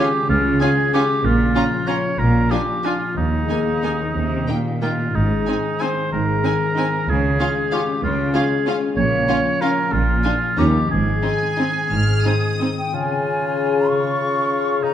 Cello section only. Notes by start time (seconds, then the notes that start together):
0.29 C#3
1.25 A#2
2.19 A#2
3.16 D#2
3.49 D#2
4.15 C3
4.48 A#2
5.14 G#2
6.12 G#2
7.08 C#3
8.03 C#3
8.97 A#2
9.92 A#2
10.58 D#2
10.90 G#2
11.92 G#2